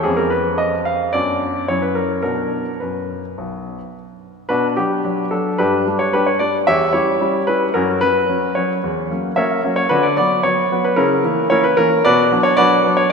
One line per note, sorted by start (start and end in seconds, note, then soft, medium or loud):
0.03 1.10 F2 medium
0.03 1.09 G#3 soft
0.03 1.09 B3 soft
0.03 1.10 C#4 soft
0.03 0.18 G#4 medium
0.17 0.31 A#4 medium
0.30 0.58 B4 medium
0.58 0.75 D#5 medium
0.85 1.10 F5 medium
1.13 1.67 F#2 medium
1.13 1.65 F#3 soft
1.13 1.65 B3 soft
1.13 1.65 D4 soft
1.13 1.64 D5 medium
1.68 2.23 F#2 soft
1.68 2.21 F#3 soft
1.68 2.22 C#4 soft
1.68 2.22 E4 soft
1.68 1.82 C#5 medium
1.82 1.96 B4 medium
1.95 2.21 A#4 medium
2.23 2.64 B2 soft
2.23 2.70 D4 soft
2.23 2.70 F#4 soft
2.23 2.80 A#4 medium
2.80 3.21 F#2 soft
2.80 3.93 B4 soft
3.38 3.77 B1 soft
4.49 4.76 B2 medium
4.49 4.75 D4 medium
4.49 4.75 F#4 medium
4.49 4.65 B4 medium
4.77 4.97 F#3 soft
4.77 5.28 B3 soft
4.77 5.03 D4 soft
4.77 5.31 G4 medium
5.05 5.24 F#3 soft
5.05 5.24 D4 soft
5.31 5.52 F#3 soft
5.31 5.52 D4 soft
5.31 5.59 A4 medium
5.58 5.86 G2 medium
5.58 5.86 D4 medium
5.58 5.97 G4 medium
5.58 6.00 B4 medium
5.87 6.07 G3 soft
5.87 6.07 D4 soft
5.99 6.13 C#5 medium
6.13 6.33 G3 soft
6.13 6.27 D4 medium
6.13 6.26 G4 medium
6.13 6.27 B4 medium
6.27 6.40 C#5 medium
6.39 6.60 G3 soft
6.39 6.60 D4 soft
6.39 6.56 D5 medium
6.67 6.93 E2 medium
6.67 6.93 G4 medium
6.67 6.91 C#5 medium
6.67 6.91 E5 medium
6.93 7.13 G3 soft
6.93 7.13 C#4 soft
6.93 7.20 E4 medium
6.93 7.44 G4 medium
6.93 7.43 C#5 medium
7.21 7.41 G3 soft
7.21 7.41 C#4 soft
7.21 7.41 E4 soft
7.47 7.67 G3 soft
7.47 7.68 C#4 soft
7.47 7.68 E4 soft
7.47 7.64 B4 medium
7.74 8.01 F#2 medium
7.74 8.00 C#4 medium
7.74 8.00 F#4 medium
7.74 7.99 A#4 medium
8.01 8.22 F#3 soft
8.01 8.22 C#4 soft
8.01 8.56 B4 medium
8.29 8.49 F#3 soft
8.29 8.49 C#4 soft
8.55 8.76 F#3 soft
8.55 8.77 C#4 soft
8.55 8.72 C#5 medium
8.84 9.10 E2 medium
9.11 9.30 F#3 soft
9.11 9.31 A#3 soft
9.11 9.31 C#4 soft
9.36 9.57 F#3 soft
9.36 9.57 A#3 soft
9.36 9.57 C#4 soft
9.36 9.76 A#4 medium
9.36 9.75 C#5 medium
9.36 9.61 E5 medium
9.64 9.84 F#3 soft
9.64 9.84 A#3 soft
9.64 9.84 C#4 soft
9.76 9.91 C#5 medium
9.89 10.17 D3 medium
9.89 10.04 D4 medium
9.89 10.04 F#4 medium
9.89 10.04 B4 medium
10.03 10.15 D5 medium
10.17 10.37 F#3 soft
10.17 10.38 B3 soft
10.17 10.42 D5 medium
10.43 10.64 F#3 soft
10.43 10.64 B3 soft
10.43 10.84 C#5 medium
10.72 10.91 F#3 soft
10.72 10.91 B3 medium
10.84 10.98 B4 medium
10.96 11.23 C#3 medium
10.96 11.24 C#4 medium
10.96 11.47 E4 medium
10.96 11.46 A#4 medium
11.24 11.43 E3 soft
11.24 11.44 A#3 soft
11.24 11.44 C#4 soft
11.50 11.70 E3 soft
11.50 11.70 A#3 soft
11.50 11.71 C#4 medium
11.50 11.64 E4 medium
11.50 11.64 A#4 medium
11.50 11.64 C#5 medium
11.64 11.77 B4 medium
11.77 11.97 E3 medium
11.77 11.97 A#3 soft
11.77 11.98 C#4 medium
11.77 12.04 A#4 medium
12.05 12.31 B2 medium
12.05 12.42 F#4 medium
12.05 12.42 B4 medium
12.05 12.40 D5 medium
12.32 12.50 F#3 medium
12.32 12.51 B3 soft
12.32 12.51 D4 medium
12.43 12.57 C#5 medium
12.57 12.76 F#3 soft
12.57 12.77 B3 medium
12.57 12.77 D4 medium
12.57 12.94 F#4 medium
12.57 12.94 B4 medium
12.57 12.92 D5 medium
12.84 13.03 F#3 soft
12.84 13.03 B3 medium
12.84 13.04 D4 medium
12.97 13.10 C#5 medium